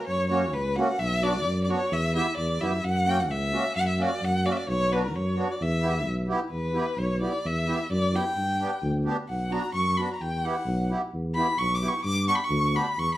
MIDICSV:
0, 0, Header, 1, 4, 480
1, 0, Start_track
1, 0, Tempo, 460829
1, 80, Time_signature, 2, 2, 24, 8
1, 13722, End_track
2, 0, Start_track
2, 0, Title_t, "Violin"
2, 0, Program_c, 0, 40
2, 77, Note_on_c, 0, 73, 97
2, 302, Note_off_c, 0, 73, 0
2, 318, Note_on_c, 0, 73, 80
2, 560, Note_on_c, 0, 71, 87
2, 575, Note_off_c, 0, 73, 0
2, 793, Note_on_c, 0, 78, 88
2, 809, Note_off_c, 0, 71, 0
2, 1032, Note_on_c, 0, 76, 107
2, 1048, Note_off_c, 0, 78, 0
2, 1281, Note_on_c, 0, 74, 105
2, 1296, Note_off_c, 0, 76, 0
2, 1700, Note_off_c, 0, 74, 0
2, 1707, Note_on_c, 0, 74, 67
2, 1776, Note_on_c, 0, 73, 93
2, 1791, Note_off_c, 0, 74, 0
2, 2012, Note_on_c, 0, 76, 107
2, 2027, Note_off_c, 0, 73, 0
2, 2245, Note_off_c, 0, 76, 0
2, 2250, Note_on_c, 0, 76, 97
2, 2468, Note_off_c, 0, 76, 0
2, 2473, Note_on_c, 0, 74, 96
2, 2717, Note_on_c, 0, 76, 90
2, 2732, Note_off_c, 0, 74, 0
2, 2959, Note_on_c, 0, 78, 112
2, 2975, Note_off_c, 0, 76, 0
2, 3193, Note_on_c, 0, 79, 113
2, 3208, Note_off_c, 0, 78, 0
2, 3334, Note_on_c, 0, 78, 88
2, 3349, Note_off_c, 0, 79, 0
2, 3447, Note_on_c, 0, 76, 100
2, 3462, Note_off_c, 0, 78, 0
2, 3912, Note_off_c, 0, 76, 0
2, 3919, Note_on_c, 0, 78, 113
2, 4029, Note_off_c, 0, 78, 0
2, 4050, Note_on_c, 0, 76, 85
2, 4186, Note_on_c, 0, 74, 100
2, 4202, Note_off_c, 0, 76, 0
2, 4420, Note_on_c, 0, 78, 105
2, 4436, Note_off_c, 0, 74, 0
2, 4648, Note_on_c, 0, 74, 82
2, 4663, Note_off_c, 0, 78, 0
2, 4704, Note_on_c, 0, 76, 76
2, 4719, Note_off_c, 0, 74, 0
2, 4761, Note_on_c, 0, 74, 91
2, 4777, Note_off_c, 0, 76, 0
2, 4878, Note_off_c, 0, 74, 0
2, 4894, Note_on_c, 0, 73, 102
2, 5132, Note_on_c, 0, 71, 90
2, 5147, Note_off_c, 0, 73, 0
2, 5242, Note_off_c, 0, 71, 0
2, 5247, Note_on_c, 0, 70, 73
2, 5376, Note_on_c, 0, 73, 84
2, 5391, Note_off_c, 0, 70, 0
2, 5749, Note_on_c, 0, 74, 73
2, 5765, Note_off_c, 0, 73, 0
2, 5857, Note_on_c, 0, 76, 93
2, 5872, Note_off_c, 0, 74, 0
2, 6323, Note_off_c, 0, 76, 0
2, 6782, Note_on_c, 0, 71, 81
2, 7275, Note_on_c, 0, 73, 84
2, 7291, Note_off_c, 0, 71, 0
2, 7512, Note_off_c, 0, 73, 0
2, 7520, Note_on_c, 0, 74, 86
2, 7773, Note_on_c, 0, 76, 97
2, 7789, Note_off_c, 0, 74, 0
2, 8240, Note_off_c, 0, 76, 0
2, 8256, Note_on_c, 0, 74, 105
2, 8494, Note_on_c, 0, 79, 92
2, 8510, Note_off_c, 0, 74, 0
2, 9201, Note_off_c, 0, 79, 0
2, 9670, Note_on_c, 0, 78, 82
2, 9915, Note_on_c, 0, 82, 90
2, 9931, Note_off_c, 0, 78, 0
2, 10147, Note_off_c, 0, 82, 0
2, 10154, Note_on_c, 0, 85, 95
2, 10386, Note_on_c, 0, 83, 85
2, 10402, Note_off_c, 0, 85, 0
2, 10549, Note_off_c, 0, 83, 0
2, 10555, Note_on_c, 0, 82, 64
2, 10638, Note_on_c, 0, 79, 85
2, 10653, Note_off_c, 0, 82, 0
2, 10885, Note_on_c, 0, 78, 92
2, 10900, Note_off_c, 0, 79, 0
2, 11358, Note_off_c, 0, 78, 0
2, 11821, Note_on_c, 0, 83, 103
2, 12067, Note_on_c, 0, 85, 107
2, 12082, Note_off_c, 0, 83, 0
2, 12237, Note_on_c, 0, 86, 96
2, 12253, Note_off_c, 0, 85, 0
2, 12376, Note_on_c, 0, 85, 90
2, 12391, Note_off_c, 0, 86, 0
2, 12545, Note_off_c, 0, 85, 0
2, 12550, Note_on_c, 0, 86, 108
2, 12776, Note_off_c, 0, 86, 0
2, 12793, Note_on_c, 0, 85, 102
2, 12869, Note_on_c, 0, 83, 97
2, 12885, Note_off_c, 0, 85, 0
2, 12957, Note_on_c, 0, 85, 100
2, 12973, Note_off_c, 0, 83, 0
2, 13289, Note_on_c, 0, 83, 98
2, 13304, Note_off_c, 0, 85, 0
2, 13531, Note_on_c, 0, 85, 113
2, 13547, Note_off_c, 0, 83, 0
2, 13686, Note_off_c, 0, 85, 0
2, 13722, End_track
3, 0, Start_track
3, 0, Title_t, "Accordion"
3, 0, Program_c, 1, 21
3, 312, Note_on_c, 1, 58, 72
3, 317, Note_on_c, 1, 66, 75
3, 318, Note_on_c, 1, 61, 55
3, 436, Note_off_c, 1, 58, 0
3, 439, Note_off_c, 1, 61, 0
3, 439, Note_off_c, 1, 66, 0
3, 802, Note_on_c, 1, 58, 60
3, 804, Note_on_c, 1, 61, 61
3, 810, Note_on_c, 1, 66, 79
3, 921, Note_off_c, 1, 58, 0
3, 922, Note_off_c, 1, 61, 0
3, 925, Note_off_c, 1, 66, 0
3, 1270, Note_on_c, 1, 59, 77
3, 1272, Note_on_c, 1, 62, 58
3, 1278, Note_on_c, 1, 66, 79
3, 1395, Note_off_c, 1, 59, 0
3, 1396, Note_off_c, 1, 62, 0
3, 1399, Note_off_c, 1, 66, 0
3, 1750, Note_on_c, 1, 59, 62
3, 1753, Note_on_c, 1, 62, 61
3, 1753, Note_on_c, 1, 66, 74
3, 1875, Note_off_c, 1, 59, 0
3, 1876, Note_off_c, 1, 62, 0
3, 1876, Note_off_c, 1, 66, 0
3, 2232, Note_on_c, 1, 59, 68
3, 2239, Note_on_c, 1, 64, 54
3, 2243, Note_on_c, 1, 67, 77
3, 2356, Note_off_c, 1, 59, 0
3, 2359, Note_off_c, 1, 64, 0
3, 2361, Note_off_c, 1, 67, 0
3, 2711, Note_on_c, 1, 59, 63
3, 2721, Note_on_c, 1, 67, 67
3, 2722, Note_on_c, 1, 64, 56
3, 2835, Note_off_c, 1, 59, 0
3, 2840, Note_off_c, 1, 64, 0
3, 2840, Note_off_c, 1, 67, 0
3, 3191, Note_on_c, 1, 58, 73
3, 3194, Note_on_c, 1, 61, 60
3, 3197, Note_on_c, 1, 66, 75
3, 3314, Note_off_c, 1, 58, 0
3, 3316, Note_off_c, 1, 61, 0
3, 3317, Note_off_c, 1, 66, 0
3, 3668, Note_on_c, 1, 58, 62
3, 3674, Note_on_c, 1, 66, 66
3, 3676, Note_on_c, 1, 61, 53
3, 3792, Note_off_c, 1, 58, 0
3, 3795, Note_off_c, 1, 66, 0
3, 3796, Note_off_c, 1, 61, 0
3, 4149, Note_on_c, 1, 58, 68
3, 4156, Note_on_c, 1, 61, 64
3, 4158, Note_on_c, 1, 66, 80
3, 4272, Note_off_c, 1, 58, 0
3, 4275, Note_off_c, 1, 61, 0
3, 4277, Note_off_c, 1, 66, 0
3, 4635, Note_on_c, 1, 58, 56
3, 4635, Note_on_c, 1, 61, 61
3, 4646, Note_on_c, 1, 66, 72
3, 4754, Note_off_c, 1, 58, 0
3, 4754, Note_off_c, 1, 61, 0
3, 4760, Note_off_c, 1, 66, 0
3, 5106, Note_on_c, 1, 59, 76
3, 5114, Note_on_c, 1, 62, 57
3, 5117, Note_on_c, 1, 66, 80
3, 5229, Note_off_c, 1, 59, 0
3, 5233, Note_off_c, 1, 62, 0
3, 5235, Note_off_c, 1, 66, 0
3, 5581, Note_on_c, 1, 59, 58
3, 5584, Note_on_c, 1, 62, 55
3, 5586, Note_on_c, 1, 66, 70
3, 5706, Note_off_c, 1, 59, 0
3, 5708, Note_off_c, 1, 62, 0
3, 5709, Note_off_c, 1, 66, 0
3, 6064, Note_on_c, 1, 59, 64
3, 6067, Note_on_c, 1, 67, 73
3, 6068, Note_on_c, 1, 64, 62
3, 6187, Note_off_c, 1, 59, 0
3, 6189, Note_off_c, 1, 64, 0
3, 6189, Note_off_c, 1, 67, 0
3, 6540, Note_on_c, 1, 64, 66
3, 6541, Note_on_c, 1, 59, 70
3, 6546, Note_on_c, 1, 67, 85
3, 6665, Note_off_c, 1, 59, 0
3, 6665, Note_off_c, 1, 64, 0
3, 6668, Note_off_c, 1, 67, 0
3, 7017, Note_on_c, 1, 64, 59
3, 7020, Note_on_c, 1, 59, 60
3, 7025, Note_on_c, 1, 67, 71
3, 7143, Note_off_c, 1, 64, 0
3, 7144, Note_off_c, 1, 59, 0
3, 7147, Note_off_c, 1, 67, 0
3, 7511, Note_on_c, 1, 59, 61
3, 7514, Note_on_c, 1, 64, 49
3, 7517, Note_on_c, 1, 67, 58
3, 7630, Note_off_c, 1, 59, 0
3, 7631, Note_off_c, 1, 64, 0
3, 7633, Note_off_c, 1, 67, 0
3, 7993, Note_on_c, 1, 59, 61
3, 7994, Note_on_c, 1, 67, 69
3, 7995, Note_on_c, 1, 64, 61
3, 8111, Note_off_c, 1, 59, 0
3, 8111, Note_off_c, 1, 67, 0
3, 8112, Note_off_c, 1, 64, 0
3, 8471, Note_on_c, 1, 59, 61
3, 8472, Note_on_c, 1, 64, 54
3, 8475, Note_on_c, 1, 67, 71
3, 8589, Note_off_c, 1, 59, 0
3, 8590, Note_off_c, 1, 64, 0
3, 8592, Note_off_c, 1, 67, 0
3, 8953, Note_on_c, 1, 59, 64
3, 8957, Note_on_c, 1, 62, 63
3, 8959, Note_on_c, 1, 67, 76
3, 9071, Note_off_c, 1, 59, 0
3, 9072, Note_off_c, 1, 62, 0
3, 9073, Note_off_c, 1, 67, 0
3, 9427, Note_on_c, 1, 59, 73
3, 9430, Note_on_c, 1, 62, 76
3, 9433, Note_on_c, 1, 67, 85
3, 9547, Note_off_c, 1, 59, 0
3, 9549, Note_off_c, 1, 62, 0
3, 9550, Note_off_c, 1, 67, 0
3, 9906, Note_on_c, 1, 59, 73
3, 9909, Note_on_c, 1, 62, 59
3, 9909, Note_on_c, 1, 66, 70
3, 10027, Note_off_c, 1, 59, 0
3, 10029, Note_off_c, 1, 62, 0
3, 10029, Note_off_c, 1, 66, 0
3, 10391, Note_on_c, 1, 59, 50
3, 10397, Note_on_c, 1, 62, 56
3, 10399, Note_on_c, 1, 66, 60
3, 10510, Note_off_c, 1, 59, 0
3, 10513, Note_off_c, 1, 62, 0
3, 10514, Note_off_c, 1, 66, 0
3, 10874, Note_on_c, 1, 59, 73
3, 10879, Note_on_c, 1, 67, 76
3, 10883, Note_on_c, 1, 64, 62
3, 10992, Note_off_c, 1, 59, 0
3, 10994, Note_off_c, 1, 67, 0
3, 10996, Note_off_c, 1, 64, 0
3, 11359, Note_on_c, 1, 59, 64
3, 11360, Note_on_c, 1, 64, 64
3, 11362, Note_on_c, 1, 67, 66
3, 11475, Note_off_c, 1, 59, 0
3, 11476, Note_off_c, 1, 64, 0
3, 11477, Note_off_c, 1, 67, 0
3, 11831, Note_on_c, 1, 59, 68
3, 11831, Note_on_c, 1, 64, 57
3, 11836, Note_on_c, 1, 67, 77
3, 11951, Note_off_c, 1, 59, 0
3, 11952, Note_off_c, 1, 64, 0
3, 11954, Note_off_c, 1, 67, 0
3, 12310, Note_on_c, 1, 59, 64
3, 12311, Note_on_c, 1, 64, 53
3, 12313, Note_on_c, 1, 67, 66
3, 12432, Note_off_c, 1, 59, 0
3, 12432, Note_off_c, 1, 64, 0
3, 12434, Note_off_c, 1, 67, 0
3, 12780, Note_on_c, 1, 59, 67
3, 12784, Note_on_c, 1, 62, 66
3, 12788, Note_on_c, 1, 67, 74
3, 12908, Note_off_c, 1, 59, 0
3, 12910, Note_off_c, 1, 62, 0
3, 12912, Note_off_c, 1, 67, 0
3, 13269, Note_on_c, 1, 59, 67
3, 13274, Note_on_c, 1, 62, 52
3, 13282, Note_on_c, 1, 67, 65
3, 13394, Note_off_c, 1, 59, 0
3, 13397, Note_off_c, 1, 62, 0
3, 13401, Note_off_c, 1, 67, 0
3, 13722, End_track
4, 0, Start_track
4, 0, Title_t, "Tuba"
4, 0, Program_c, 2, 58
4, 78, Note_on_c, 2, 42, 86
4, 545, Note_on_c, 2, 37, 98
4, 561, Note_off_c, 2, 42, 0
4, 838, Note_off_c, 2, 37, 0
4, 1026, Note_on_c, 2, 35, 98
4, 1507, Note_on_c, 2, 42, 96
4, 1523, Note_off_c, 2, 35, 0
4, 1799, Note_off_c, 2, 42, 0
4, 1992, Note_on_c, 2, 40, 97
4, 2282, Note_off_c, 2, 40, 0
4, 2475, Note_on_c, 2, 40, 87
4, 2693, Note_off_c, 2, 40, 0
4, 2717, Note_on_c, 2, 42, 78
4, 2933, Note_off_c, 2, 42, 0
4, 2953, Note_on_c, 2, 42, 95
4, 3424, Note_on_c, 2, 37, 98
4, 3440, Note_off_c, 2, 42, 0
4, 3715, Note_off_c, 2, 37, 0
4, 3916, Note_on_c, 2, 42, 88
4, 4203, Note_off_c, 2, 42, 0
4, 4393, Note_on_c, 2, 42, 96
4, 4681, Note_off_c, 2, 42, 0
4, 4874, Note_on_c, 2, 35, 99
4, 5357, Note_on_c, 2, 42, 89
4, 5373, Note_off_c, 2, 35, 0
4, 5643, Note_off_c, 2, 42, 0
4, 5836, Note_on_c, 2, 40, 102
4, 6301, Note_on_c, 2, 35, 92
4, 6317, Note_off_c, 2, 40, 0
4, 6591, Note_off_c, 2, 35, 0
4, 6779, Note_on_c, 2, 40, 81
4, 7070, Note_off_c, 2, 40, 0
4, 7259, Note_on_c, 2, 35, 99
4, 7550, Note_off_c, 2, 35, 0
4, 7753, Note_on_c, 2, 40, 85
4, 8039, Note_off_c, 2, 40, 0
4, 8231, Note_on_c, 2, 42, 100
4, 8518, Note_off_c, 2, 42, 0
4, 8707, Note_on_c, 2, 43, 74
4, 8995, Note_off_c, 2, 43, 0
4, 9189, Note_on_c, 2, 38, 114
4, 9477, Note_off_c, 2, 38, 0
4, 9680, Note_on_c, 2, 35, 85
4, 9964, Note_off_c, 2, 35, 0
4, 10148, Note_on_c, 2, 42, 89
4, 10436, Note_off_c, 2, 42, 0
4, 10628, Note_on_c, 2, 40, 83
4, 10917, Note_off_c, 2, 40, 0
4, 11096, Note_on_c, 2, 35, 111
4, 11389, Note_off_c, 2, 35, 0
4, 11591, Note_on_c, 2, 40, 85
4, 11880, Note_off_c, 2, 40, 0
4, 12067, Note_on_c, 2, 35, 90
4, 12358, Note_off_c, 2, 35, 0
4, 12540, Note_on_c, 2, 43, 89
4, 12833, Note_off_c, 2, 43, 0
4, 13021, Note_on_c, 2, 38, 116
4, 13315, Note_off_c, 2, 38, 0
4, 13508, Note_on_c, 2, 40, 92
4, 13656, Note_off_c, 2, 40, 0
4, 13722, End_track
0, 0, End_of_file